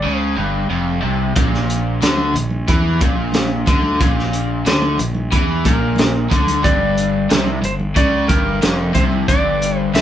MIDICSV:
0, 0, Header, 1, 5, 480
1, 0, Start_track
1, 0, Tempo, 657895
1, 1004, Time_signature, 4, 2, 24, 8
1, 7307, End_track
2, 0, Start_track
2, 0, Title_t, "Electric slide guitar"
2, 0, Program_c, 0, 29
2, 0, Note_on_c, 0, 74, 76
2, 127, Note_off_c, 0, 74, 0
2, 127, Note_on_c, 0, 72, 76
2, 241, Note_off_c, 0, 72, 0
2, 4129, Note_on_c, 0, 70, 69
2, 4625, Note_off_c, 0, 70, 0
2, 4625, Note_on_c, 0, 69, 69
2, 4845, Note_on_c, 0, 74, 94
2, 4868, Note_off_c, 0, 69, 0
2, 5535, Note_off_c, 0, 74, 0
2, 5581, Note_on_c, 0, 72, 81
2, 5644, Note_off_c, 0, 72, 0
2, 5815, Note_on_c, 0, 74, 86
2, 6033, Note_off_c, 0, 74, 0
2, 6044, Note_on_c, 0, 70, 80
2, 6495, Note_off_c, 0, 70, 0
2, 6526, Note_on_c, 0, 72, 85
2, 6591, Note_off_c, 0, 72, 0
2, 6773, Note_on_c, 0, 74, 92
2, 7145, Note_off_c, 0, 74, 0
2, 7145, Note_on_c, 0, 72, 92
2, 7256, Note_off_c, 0, 72, 0
2, 7259, Note_on_c, 0, 76, 91
2, 7307, Note_off_c, 0, 76, 0
2, 7307, End_track
3, 0, Start_track
3, 0, Title_t, "Overdriven electric guitar"
3, 0, Program_c, 1, 29
3, 26, Note_on_c, 1, 49, 84
3, 263, Note_on_c, 1, 43, 99
3, 267, Note_off_c, 1, 49, 0
3, 506, Note_off_c, 1, 43, 0
3, 509, Note_on_c, 1, 41, 94
3, 744, Note_off_c, 1, 41, 0
3, 747, Note_on_c, 1, 48, 79
3, 988, Note_off_c, 1, 48, 0
3, 992, Note_on_c, 1, 46, 96
3, 1471, Note_off_c, 1, 46, 0
3, 1474, Note_on_c, 1, 50, 94
3, 1712, Note_off_c, 1, 50, 0
3, 1714, Note_on_c, 1, 46, 64
3, 1911, Note_off_c, 1, 46, 0
3, 1961, Note_on_c, 1, 52, 100
3, 2193, Note_on_c, 1, 46, 91
3, 2195, Note_off_c, 1, 52, 0
3, 2671, Note_off_c, 1, 46, 0
3, 2681, Note_on_c, 1, 50, 89
3, 2915, Note_off_c, 1, 50, 0
3, 2923, Note_on_c, 1, 46, 103
3, 3396, Note_off_c, 1, 46, 0
3, 3401, Note_on_c, 1, 50, 89
3, 3635, Note_off_c, 1, 50, 0
3, 3640, Note_on_c, 1, 46, 69
3, 3834, Note_off_c, 1, 46, 0
3, 3880, Note_on_c, 1, 52, 98
3, 4114, Note_off_c, 1, 52, 0
3, 4129, Note_on_c, 1, 46, 96
3, 4599, Note_off_c, 1, 46, 0
3, 4605, Note_on_c, 1, 50, 84
3, 4837, Note_off_c, 1, 50, 0
3, 4839, Note_on_c, 1, 43, 106
3, 5314, Note_off_c, 1, 43, 0
3, 5324, Note_on_c, 1, 48, 100
3, 5554, Note_off_c, 1, 48, 0
3, 5557, Note_on_c, 1, 43, 67
3, 5752, Note_off_c, 1, 43, 0
3, 5804, Note_on_c, 1, 49, 97
3, 6037, Note_off_c, 1, 49, 0
3, 6043, Note_on_c, 1, 43, 101
3, 6277, Note_off_c, 1, 43, 0
3, 6287, Note_on_c, 1, 41, 103
3, 6519, Note_off_c, 1, 41, 0
3, 6525, Note_on_c, 1, 48, 89
3, 6758, Note_off_c, 1, 48, 0
3, 6776, Note_on_c, 1, 43, 109
3, 7244, Note_off_c, 1, 43, 0
3, 7253, Note_on_c, 1, 48, 84
3, 7307, Note_off_c, 1, 48, 0
3, 7307, End_track
4, 0, Start_track
4, 0, Title_t, "Fingered electric bass"
4, 0, Program_c, 2, 33
4, 39, Note_on_c, 2, 37, 84
4, 264, Note_off_c, 2, 37, 0
4, 276, Note_on_c, 2, 31, 85
4, 503, Note_off_c, 2, 31, 0
4, 515, Note_on_c, 2, 29, 91
4, 743, Note_off_c, 2, 29, 0
4, 755, Note_on_c, 2, 36, 80
4, 982, Note_off_c, 2, 36, 0
4, 997, Note_on_c, 2, 34, 80
4, 1451, Note_off_c, 2, 34, 0
4, 1479, Note_on_c, 2, 38, 73
4, 1704, Note_off_c, 2, 38, 0
4, 1720, Note_on_c, 2, 34, 73
4, 1945, Note_off_c, 2, 34, 0
4, 1963, Note_on_c, 2, 40, 86
4, 2187, Note_off_c, 2, 40, 0
4, 2201, Note_on_c, 2, 34, 78
4, 2653, Note_off_c, 2, 34, 0
4, 2687, Note_on_c, 2, 38, 78
4, 2909, Note_off_c, 2, 38, 0
4, 2927, Note_on_c, 2, 34, 94
4, 3376, Note_off_c, 2, 34, 0
4, 3406, Note_on_c, 2, 38, 80
4, 3628, Note_off_c, 2, 38, 0
4, 3645, Note_on_c, 2, 34, 77
4, 3867, Note_off_c, 2, 34, 0
4, 3885, Note_on_c, 2, 40, 87
4, 4108, Note_off_c, 2, 40, 0
4, 4128, Note_on_c, 2, 34, 93
4, 4576, Note_off_c, 2, 34, 0
4, 4610, Note_on_c, 2, 38, 78
4, 4830, Note_off_c, 2, 38, 0
4, 4853, Note_on_c, 2, 31, 89
4, 5299, Note_off_c, 2, 31, 0
4, 5342, Note_on_c, 2, 36, 80
4, 5556, Note_off_c, 2, 36, 0
4, 5579, Note_on_c, 2, 31, 83
4, 5795, Note_off_c, 2, 31, 0
4, 5815, Note_on_c, 2, 37, 85
4, 6033, Note_off_c, 2, 37, 0
4, 6058, Note_on_c, 2, 31, 94
4, 6275, Note_off_c, 2, 31, 0
4, 6305, Note_on_c, 2, 29, 92
4, 6519, Note_off_c, 2, 29, 0
4, 6539, Note_on_c, 2, 36, 88
4, 6756, Note_off_c, 2, 36, 0
4, 6778, Note_on_c, 2, 31, 85
4, 7223, Note_off_c, 2, 31, 0
4, 7257, Note_on_c, 2, 36, 86
4, 7307, Note_off_c, 2, 36, 0
4, 7307, End_track
5, 0, Start_track
5, 0, Title_t, "Drums"
5, 991, Note_on_c, 9, 42, 74
5, 995, Note_on_c, 9, 36, 104
5, 1064, Note_off_c, 9, 42, 0
5, 1067, Note_off_c, 9, 36, 0
5, 1122, Note_on_c, 9, 38, 30
5, 1195, Note_off_c, 9, 38, 0
5, 1239, Note_on_c, 9, 42, 64
5, 1312, Note_off_c, 9, 42, 0
5, 1475, Note_on_c, 9, 42, 72
5, 1477, Note_on_c, 9, 64, 62
5, 1483, Note_on_c, 9, 38, 97
5, 1548, Note_off_c, 9, 42, 0
5, 1550, Note_off_c, 9, 64, 0
5, 1556, Note_off_c, 9, 38, 0
5, 1587, Note_on_c, 9, 63, 58
5, 1660, Note_off_c, 9, 63, 0
5, 1705, Note_on_c, 9, 64, 64
5, 1719, Note_on_c, 9, 42, 60
5, 1778, Note_off_c, 9, 64, 0
5, 1792, Note_off_c, 9, 42, 0
5, 1828, Note_on_c, 9, 63, 57
5, 1900, Note_off_c, 9, 63, 0
5, 1957, Note_on_c, 9, 36, 105
5, 1957, Note_on_c, 9, 42, 63
5, 2030, Note_off_c, 9, 36, 0
5, 2030, Note_off_c, 9, 42, 0
5, 2193, Note_on_c, 9, 63, 62
5, 2196, Note_on_c, 9, 42, 64
5, 2198, Note_on_c, 9, 36, 100
5, 2266, Note_off_c, 9, 63, 0
5, 2269, Note_off_c, 9, 42, 0
5, 2271, Note_off_c, 9, 36, 0
5, 2423, Note_on_c, 9, 63, 66
5, 2434, Note_on_c, 9, 42, 60
5, 2442, Note_on_c, 9, 38, 95
5, 2496, Note_off_c, 9, 63, 0
5, 2507, Note_off_c, 9, 42, 0
5, 2515, Note_off_c, 9, 38, 0
5, 2671, Note_on_c, 9, 64, 70
5, 2680, Note_on_c, 9, 36, 109
5, 2681, Note_on_c, 9, 42, 64
5, 2744, Note_off_c, 9, 64, 0
5, 2753, Note_off_c, 9, 36, 0
5, 2754, Note_off_c, 9, 42, 0
5, 2791, Note_on_c, 9, 63, 68
5, 2864, Note_off_c, 9, 63, 0
5, 2923, Note_on_c, 9, 36, 108
5, 2925, Note_on_c, 9, 42, 69
5, 2996, Note_off_c, 9, 36, 0
5, 2998, Note_off_c, 9, 42, 0
5, 3057, Note_on_c, 9, 38, 27
5, 3130, Note_off_c, 9, 38, 0
5, 3161, Note_on_c, 9, 42, 58
5, 3234, Note_off_c, 9, 42, 0
5, 3396, Note_on_c, 9, 64, 67
5, 3401, Note_on_c, 9, 42, 69
5, 3409, Note_on_c, 9, 38, 107
5, 3469, Note_off_c, 9, 64, 0
5, 3474, Note_off_c, 9, 42, 0
5, 3482, Note_off_c, 9, 38, 0
5, 3517, Note_on_c, 9, 63, 72
5, 3590, Note_off_c, 9, 63, 0
5, 3634, Note_on_c, 9, 64, 68
5, 3642, Note_on_c, 9, 42, 61
5, 3707, Note_off_c, 9, 64, 0
5, 3715, Note_off_c, 9, 42, 0
5, 3753, Note_on_c, 9, 63, 65
5, 3826, Note_off_c, 9, 63, 0
5, 3882, Note_on_c, 9, 36, 96
5, 3882, Note_on_c, 9, 42, 62
5, 3955, Note_off_c, 9, 36, 0
5, 3955, Note_off_c, 9, 42, 0
5, 4123, Note_on_c, 9, 63, 72
5, 4124, Note_on_c, 9, 36, 99
5, 4127, Note_on_c, 9, 42, 69
5, 4196, Note_off_c, 9, 63, 0
5, 4197, Note_off_c, 9, 36, 0
5, 4200, Note_off_c, 9, 42, 0
5, 4348, Note_on_c, 9, 63, 71
5, 4365, Note_on_c, 9, 42, 60
5, 4373, Note_on_c, 9, 38, 98
5, 4420, Note_off_c, 9, 63, 0
5, 4438, Note_off_c, 9, 42, 0
5, 4446, Note_off_c, 9, 38, 0
5, 4598, Note_on_c, 9, 64, 64
5, 4607, Note_on_c, 9, 36, 96
5, 4611, Note_on_c, 9, 42, 65
5, 4671, Note_off_c, 9, 64, 0
5, 4680, Note_off_c, 9, 36, 0
5, 4684, Note_off_c, 9, 42, 0
5, 4719, Note_on_c, 9, 63, 74
5, 4729, Note_on_c, 9, 42, 64
5, 4792, Note_off_c, 9, 63, 0
5, 4802, Note_off_c, 9, 42, 0
5, 4848, Note_on_c, 9, 36, 103
5, 4854, Note_on_c, 9, 42, 67
5, 4920, Note_off_c, 9, 36, 0
5, 4927, Note_off_c, 9, 42, 0
5, 5089, Note_on_c, 9, 42, 60
5, 5162, Note_off_c, 9, 42, 0
5, 5328, Note_on_c, 9, 42, 67
5, 5336, Note_on_c, 9, 38, 118
5, 5337, Note_on_c, 9, 64, 69
5, 5401, Note_off_c, 9, 42, 0
5, 5409, Note_off_c, 9, 38, 0
5, 5410, Note_off_c, 9, 64, 0
5, 5452, Note_on_c, 9, 63, 71
5, 5525, Note_off_c, 9, 63, 0
5, 5571, Note_on_c, 9, 42, 63
5, 5571, Note_on_c, 9, 64, 67
5, 5644, Note_off_c, 9, 42, 0
5, 5644, Note_off_c, 9, 64, 0
5, 5688, Note_on_c, 9, 63, 62
5, 5761, Note_off_c, 9, 63, 0
5, 5809, Note_on_c, 9, 36, 99
5, 5809, Note_on_c, 9, 42, 68
5, 5882, Note_off_c, 9, 36, 0
5, 5882, Note_off_c, 9, 42, 0
5, 6049, Note_on_c, 9, 42, 74
5, 6052, Note_on_c, 9, 36, 102
5, 6054, Note_on_c, 9, 63, 69
5, 6122, Note_off_c, 9, 42, 0
5, 6125, Note_off_c, 9, 36, 0
5, 6127, Note_off_c, 9, 63, 0
5, 6289, Note_on_c, 9, 42, 68
5, 6297, Note_on_c, 9, 38, 109
5, 6298, Note_on_c, 9, 63, 64
5, 6362, Note_off_c, 9, 42, 0
5, 6370, Note_off_c, 9, 38, 0
5, 6371, Note_off_c, 9, 63, 0
5, 6528, Note_on_c, 9, 42, 69
5, 6530, Note_on_c, 9, 64, 71
5, 6532, Note_on_c, 9, 36, 91
5, 6601, Note_off_c, 9, 42, 0
5, 6603, Note_off_c, 9, 64, 0
5, 6604, Note_off_c, 9, 36, 0
5, 6652, Note_on_c, 9, 63, 67
5, 6725, Note_off_c, 9, 63, 0
5, 6773, Note_on_c, 9, 36, 101
5, 6776, Note_on_c, 9, 42, 69
5, 6846, Note_off_c, 9, 36, 0
5, 6849, Note_off_c, 9, 42, 0
5, 7018, Note_on_c, 9, 42, 64
5, 7091, Note_off_c, 9, 42, 0
5, 7250, Note_on_c, 9, 64, 63
5, 7258, Note_on_c, 9, 42, 61
5, 7266, Note_on_c, 9, 38, 107
5, 7307, Note_off_c, 9, 38, 0
5, 7307, Note_off_c, 9, 42, 0
5, 7307, Note_off_c, 9, 64, 0
5, 7307, End_track
0, 0, End_of_file